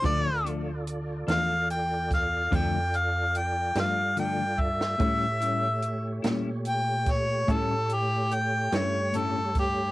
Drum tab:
HH |x-x-x-x-x-x-x-x-x-x-x---|x-x-x-x-x-x-x-x-x-x-x-x-|
SD |------o---o-------o----o|------o---o-------o---o-|
BD |o---------o-o---------o-|o---------o-o---------o-|